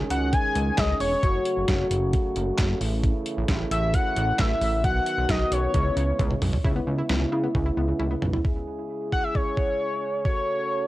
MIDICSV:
0, 0, Header, 1, 6, 480
1, 0, Start_track
1, 0, Key_signature, 4, "minor"
1, 0, Tempo, 451128
1, 1309, Time_signature, 4, 2, 24, 8
1, 11568, End_track
2, 0, Start_track
2, 0, Title_t, "Analog synth lead"
2, 0, Program_c, 0, 81
2, 114, Note_on_c, 0, 78, 105
2, 351, Note_on_c, 0, 80, 117
2, 367, Note_off_c, 0, 78, 0
2, 829, Note_on_c, 0, 75, 98
2, 844, Note_off_c, 0, 80, 0
2, 1063, Note_off_c, 0, 75, 0
2, 1070, Note_on_c, 0, 73, 96
2, 1987, Note_off_c, 0, 73, 0
2, 3952, Note_on_c, 0, 76, 104
2, 4192, Note_on_c, 0, 78, 119
2, 4208, Note_off_c, 0, 76, 0
2, 4675, Note_on_c, 0, 76, 108
2, 4691, Note_off_c, 0, 78, 0
2, 5148, Note_off_c, 0, 76, 0
2, 5155, Note_on_c, 0, 78, 116
2, 5634, Note_on_c, 0, 75, 100
2, 5650, Note_off_c, 0, 78, 0
2, 5876, Note_on_c, 0, 73, 96
2, 5892, Note_off_c, 0, 75, 0
2, 6833, Note_off_c, 0, 73, 0
2, 9708, Note_on_c, 0, 78, 102
2, 9827, Note_on_c, 0, 76, 94
2, 9843, Note_off_c, 0, 78, 0
2, 9948, Note_on_c, 0, 73, 103
2, 9964, Note_off_c, 0, 76, 0
2, 10900, Note_off_c, 0, 73, 0
2, 10906, Note_on_c, 0, 73, 93
2, 11568, Note_off_c, 0, 73, 0
2, 11568, End_track
3, 0, Start_track
3, 0, Title_t, "Synth arpeggio sound"
3, 0, Program_c, 1, 84
3, 7070, Note_on_c, 1, 64, 100
3, 7172, Note_off_c, 1, 64, 0
3, 7192, Note_on_c, 1, 59, 77
3, 7294, Note_off_c, 1, 59, 0
3, 7311, Note_on_c, 1, 49, 80
3, 7413, Note_off_c, 1, 49, 0
3, 7431, Note_on_c, 1, 64, 78
3, 7533, Note_off_c, 1, 64, 0
3, 7550, Note_on_c, 1, 59, 86
3, 7653, Note_off_c, 1, 59, 0
3, 7670, Note_on_c, 1, 49, 72
3, 7772, Note_off_c, 1, 49, 0
3, 7790, Note_on_c, 1, 64, 81
3, 7892, Note_off_c, 1, 64, 0
3, 7911, Note_on_c, 1, 59, 74
3, 8013, Note_off_c, 1, 59, 0
3, 8030, Note_on_c, 1, 49, 90
3, 8132, Note_off_c, 1, 49, 0
3, 8148, Note_on_c, 1, 64, 79
3, 8251, Note_off_c, 1, 64, 0
3, 8268, Note_on_c, 1, 59, 80
3, 8371, Note_off_c, 1, 59, 0
3, 8385, Note_on_c, 1, 49, 72
3, 8490, Note_off_c, 1, 49, 0
3, 8505, Note_on_c, 1, 64, 87
3, 8609, Note_off_c, 1, 64, 0
3, 8627, Note_on_c, 1, 59, 76
3, 8731, Note_off_c, 1, 59, 0
3, 8746, Note_on_c, 1, 49, 76
3, 8850, Note_off_c, 1, 49, 0
3, 8868, Note_on_c, 1, 64, 72
3, 8971, Note_off_c, 1, 64, 0
3, 11568, End_track
4, 0, Start_track
4, 0, Title_t, "French horn section"
4, 0, Program_c, 2, 60
4, 0, Note_on_c, 2, 51, 77
4, 0, Note_on_c, 2, 56, 70
4, 0, Note_on_c, 2, 61, 71
4, 0, Note_on_c, 2, 68, 85
4, 1272, Note_off_c, 2, 51, 0
4, 1291, Note_off_c, 2, 56, 0
4, 1291, Note_off_c, 2, 68, 0
4, 1292, Note_off_c, 2, 61, 0
4, 1310, Note_on_c, 2, 49, 76
4, 1310, Note_on_c, 2, 54, 73
4, 1312, Note_on_c, 2, 57, 70
4, 1312, Note_on_c, 2, 66, 89
4, 2973, Note_off_c, 2, 49, 0
4, 2973, Note_off_c, 2, 54, 0
4, 2974, Note_off_c, 2, 66, 0
4, 2992, Note_on_c, 2, 49, 79
4, 2992, Note_on_c, 2, 52, 72
4, 2992, Note_on_c, 2, 64, 88
4, 5112, Note_off_c, 2, 57, 0
4, 5129, Note_off_c, 2, 49, 0
4, 5129, Note_off_c, 2, 52, 0
4, 5129, Note_off_c, 2, 64, 0
4, 5150, Note_on_c, 2, 54, 67
4, 5152, Note_on_c, 2, 51, 73
4, 5152, Note_on_c, 2, 59, 72
4, 5152, Note_on_c, 2, 66, 83
4, 6100, Note_off_c, 2, 54, 0
4, 6101, Note_off_c, 2, 51, 0
4, 6101, Note_off_c, 2, 66, 0
4, 6110, Note_on_c, 2, 49, 76
4, 6110, Note_on_c, 2, 56, 70
4, 6112, Note_on_c, 2, 64, 85
4, 6893, Note_off_c, 2, 49, 0
4, 6893, Note_off_c, 2, 56, 0
4, 6893, Note_off_c, 2, 59, 0
4, 6893, Note_off_c, 2, 64, 0
4, 7074, Note_on_c, 2, 56, 70
4, 7075, Note_on_c, 2, 49, 74
4, 7075, Note_on_c, 2, 64, 80
4, 7076, Note_on_c, 2, 59, 70
4, 8973, Note_off_c, 2, 49, 0
4, 8973, Note_off_c, 2, 56, 0
4, 8973, Note_off_c, 2, 64, 0
4, 8974, Note_off_c, 2, 59, 0
4, 8989, Note_on_c, 2, 49, 67
4, 8989, Note_on_c, 2, 56, 61
4, 8989, Note_on_c, 2, 64, 65
4, 8990, Note_on_c, 2, 68, 76
4, 10890, Note_off_c, 2, 56, 0
4, 10890, Note_off_c, 2, 64, 0
4, 10890, Note_off_c, 2, 68, 0
4, 10909, Note_on_c, 2, 57, 64
4, 10910, Note_on_c, 2, 66, 66
4, 10910, Note_on_c, 2, 69, 75
4, 11568, Note_off_c, 2, 49, 0
4, 11568, Note_off_c, 2, 57, 0
4, 11568, Note_off_c, 2, 66, 0
4, 11568, Note_off_c, 2, 69, 0
4, 11568, End_track
5, 0, Start_track
5, 0, Title_t, "Analog synth bass"
5, 0, Program_c, 3, 38
5, 108, Note_on_c, 3, 37, 100
5, 361, Note_off_c, 3, 37, 0
5, 588, Note_on_c, 3, 37, 102
5, 757, Note_off_c, 3, 37, 0
5, 831, Note_on_c, 3, 37, 104
5, 998, Note_off_c, 3, 37, 0
5, 1069, Note_on_c, 3, 28, 93
5, 1237, Note_off_c, 3, 28, 0
5, 1310, Note_on_c, 3, 30, 120
5, 1478, Note_off_c, 3, 30, 0
5, 1667, Note_on_c, 3, 30, 102
5, 1752, Note_off_c, 3, 30, 0
5, 1788, Note_on_c, 3, 30, 107
5, 1957, Note_off_c, 3, 30, 0
5, 2028, Note_on_c, 3, 30, 106
5, 2280, Note_off_c, 3, 30, 0
5, 2509, Note_on_c, 3, 30, 105
5, 2677, Note_off_c, 3, 30, 0
5, 2751, Note_on_c, 3, 30, 103
5, 2918, Note_off_c, 3, 30, 0
5, 2989, Note_on_c, 3, 33, 102
5, 3325, Note_off_c, 3, 33, 0
5, 3589, Note_on_c, 3, 33, 98
5, 3673, Note_off_c, 3, 33, 0
5, 3709, Note_on_c, 3, 33, 110
5, 3877, Note_off_c, 3, 33, 0
5, 3949, Note_on_c, 3, 33, 103
5, 4201, Note_off_c, 3, 33, 0
5, 4430, Note_on_c, 3, 33, 107
5, 4598, Note_off_c, 3, 33, 0
5, 4671, Note_on_c, 3, 33, 107
5, 4838, Note_off_c, 3, 33, 0
5, 4908, Note_on_c, 3, 33, 90
5, 5151, Note_on_c, 3, 35, 110
5, 5167, Note_off_c, 3, 33, 0
5, 5318, Note_off_c, 3, 35, 0
5, 5509, Note_on_c, 3, 35, 100
5, 5593, Note_off_c, 3, 35, 0
5, 5628, Note_on_c, 3, 35, 101
5, 5797, Note_off_c, 3, 35, 0
5, 5868, Note_on_c, 3, 35, 102
5, 6036, Note_off_c, 3, 35, 0
5, 6112, Note_on_c, 3, 37, 110
5, 6279, Note_off_c, 3, 37, 0
5, 6348, Note_on_c, 3, 37, 103
5, 6516, Note_off_c, 3, 37, 0
5, 6591, Note_on_c, 3, 37, 112
5, 6759, Note_off_c, 3, 37, 0
5, 6829, Note_on_c, 3, 35, 101
5, 6997, Note_off_c, 3, 35, 0
5, 7071, Note_on_c, 3, 37, 109
5, 7238, Note_off_c, 3, 37, 0
5, 7309, Note_on_c, 3, 37, 100
5, 7477, Note_off_c, 3, 37, 0
5, 7549, Note_on_c, 3, 37, 105
5, 7717, Note_off_c, 3, 37, 0
5, 7788, Note_on_c, 3, 49, 105
5, 7956, Note_off_c, 3, 49, 0
5, 8031, Note_on_c, 3, 37, 105
5, 8198, Note_off_c, 3, 37, 0
5, 8268, Note_on_c, 3, 37, 97
5, 8437, Note_off_c, 3, 37, 0
5, 8507, Note_on_c, 3, 37, 99
5, 8676, Note_off_c, 3, 37, 0
5, 8749, Note_on_c, 3, 35, 89
5, 8917, Note_off_c, 3, 35, 0
5, 11568, End_track
6, 0, Start_track
6, 0, Title_t, "Drums"
6, 111, Note_on_c, 9, 42, 89
6, 218, Note_off_c, 9, 42, 0
6, 350, Note_on_c, 9, 42, 84
6, 353, Note_on_c, 9, 36, 122
6, 456, Note_off_c, 9, 42, 0
6, 459, Note_off_c, 9, 36, 0
6, 591, Note_on_c, 9, 42, 76
6, 697, Note_off_c, 9, 42, 0
6, 829, Note_on_c, 9, 38, 114
6, 829, Note_on_c, 9, 39, 93
6, 832, Note_on_c, 9, 36, 119
6, 832, Note_on_c, 9, 42, 69
6, 935, Note_off_c, 9, 38, 0
6, 935, Note_off_c, 9, 39, 0
6, 938, Note_off_c, 9, 36, 0
6, 938, Note_off_c, 9, 42, 0
6, 1069, Note_on_c, 9, 46, 77
6, 1175, Note_off_c, 9, 46, 0
6, 1311, Note_on_c, 9, 36, 121
6, 1311, Note_on_c, 9, 42, 71
6, 1417, Note_off_c, 9, 36, 0
6, 1417, Note_off_c, 9, 42, 0
6, 1548, Note_on_c, 9, 42, 76
6, 1654, Note_off_c, 9, 42, 0
6, 1788, Note_on_c, 9, 38, 118
6, 1789, Note_on_c, 9, 36, 122
6, 1789, Note_on_c, 9, 42, 82
6, 1894, Note_off_c, 9, 38, 0
6, 1896, Note_off_c, 9, 36, 0
6, 1896, Note_off_c, 9, 42, 0
6, 2031, Note_on_c, 9, 42, 89
6, 2138, Note_off_c, 9, 42, 0
6, 2270, Note_on_c, 9, 42, 87
6, 2273, Note_on_c, 9, 36, 120
6, 2377, Note_off_c, 9, 42, 0
6, 2379, Note_off_c, 9, 36, 0
6, 2510, Note_on_c, 9, 42, 73
6, 2616, Note_off_c, 9, 42, 0
6, 2747, Note_on_c, 9, 38, 117
6, 2747, Note_on_c, 9, 39, 94
6, 2750, Note_on_c, 9, 42, 71
6, 2751, Note_on_c, 9, 36, 120
6, 2854, Note_off_c, 9, 38, 0
6, 2854, Note_off_c, 9, 39, 0
6, 2856, Note_off_c, 9, 42, 0
6, 2857, Note_off_c, 9, 36, 0
6, 2989, Note_on_c, 9, 46, 81
6, 3095, Note_off_c, 9, 46, 0
6, 3230, Note_on_c, 9, 36, 121
6, 3230, Note_on_c, 9, 42, 71
6, 3336, Note_off_c, 9, 36, 0
6, 3336, Note_off_c, 9, 42, 0
6, 3467, Note_on_c, 9, 42, 77
6, 3574, Note_off_c, 9, 42, 0
6, 3706, Note_on_c, 9, 38, 115
6, 3708, Note_on_c, 9, 36, 123
6, 3708, Note_on_c, 9, 42, 86
6, 3813, Note_off_c, 9, 38, 0
6, 3814, Note_off_c, 9, 42, 0
6, 3815, Note_off_c, 9, 36, 0
6, 3951, Note_on_c, 9, 42, 91
6, 4058, Note_off_c, 9, 42, 0
6, 4189, Note_on_c, 9, 42, 86
6, 4192, Note_on_c, 9, 36, 123
6, 4295, Note_off_c, 9, 42, 0
6, 4298, Note_off_c, 9, 36, 0
6, 4430, Note_on_c, 9, 42, 75
6, 4537, Note_off_c, 9, 42, 0
6, 4668, Note_on_c, 9, 38, 113
6, 4668, Note_on_c, 9, 39, 95
6, 4671, Note_on_c, 9, 36, 119
6, 4671, Note_on_c, 9, 42, 70
6, 4775, Note_off_c, 9, 38, 0
6, 4775, Note_off_c, 9, 39, 0
6, 4777, Note_off_c, 9, 42, 0
6, 4778, Note_off_c, 9, 36, 0
6, 4909, Note_on_c, 9, 46, 78
6, 5015, Note_off_c, 9, 46, 0
6, 5151, Note_on_c, 9, 36, 120
6, 5151, Note_on_c, 9, 42, 73
6, 5257, Note_off_c, 9, 36, 0
6, 5257, Note_off_c, 9, 42, 0
6, 5387, Note_on_c, 9, 42, 78
6, 5493, Note_off_c, 9, 42, 0
6, 5628, Note_on_c, 9, 38, 116
6, 5629, Note_on_c, 9, 36, 121
6, 5629, Note_on_c, 9, 42, 85
6, 5734, Note_off_c, 9, 38, 0
6, 5735, Note_off_c, 9, 36, 0
6, 5736, Note_off_c, 9, 42, 0
6, 5872, Note_on_c, 9, 42, 90
6, 5978, Note_off_c, 9, 42, 0
6, 6109, Note_on_c, 9, 42, 85
6, 6112, Note_on_c, 9, 36, 118
6, 6216, Note_off_c, 9, 42, 0
6, 6219, Note_off_c, 9, 36, 0
6, 6351, Note_on_c, 9, 42, 75
6, 6457, Note_off_c, 9, 42, 0
6, 6590, Note_on_c, 9, 48, 61
6, 6591, Note_on_c, 9, 36, 121
6, 6591, Note_on_c, 9, 42, 70
6, 6696, Note_off_c, 9, 48, 0
6, 6697, Note_off_c, 9, 36, 0
6, 6697, Note_off_c, 9, 42, 0
6, 6710, Note_on_c, 9, 47, 67
6, 6816, Note_off_c, 9, 47, 0
6, 6828, Note_on_c, 9, 46, 79
6, 6829, Note_on_c, 9, 45, 96
6, 6935, Note_off_c, 9, 46, 0
6, 6936, Note_off_c, 9, 45, 0
6, 6949, Note_on_c, 9, 43, 97
6, 7056, Note_off_c, 9, 43, 0
6, 7070, Note_on_c, 9, 36, 114
6, 7176, Note_off_c, 9, 36, 0
6, 7548, Note_on_c, 9, 38, 109
6, 7654, Note_off_c, 9, 38, 0
6, 8031, Note_on_c, 9, 36, 97
6, 8137, Note_off_c, 9, 36, 0
6, 8508, Note_on_c, 9, 48, 55
6, 8614, Note_off_c, 9, 48, 0
6, 8748, Note_on_c, 9, 45, 87
6, 8854, Note_off_c, 9, 45, 0
6, 8867, Note_on_c, 9, 43, 84
6, 8974, Note_off_c, 9, 43, 0
6, 8988, Note_on_c, 9, 36, 107
6, 9094, Note_off_c, 9, 36, 0
6, 9709, Note_on_c, 9, 36, 82
6, 9815, Note_off_c, 9, 36, 0
6, 9950, Note_on_c, 9, 36, 89
6, 10057, Note_off_c, 9, 36, 0
6, 10186, Note_on_c, 9, 36, 89
6, 10293, Note_off_c, 9, 36, 0
6, 10908, Note_on_c, 9, 36, 108
6, 11015, Note_off_c, 9, 36, 0
6, 11568, End_track
0, 0, End_of_file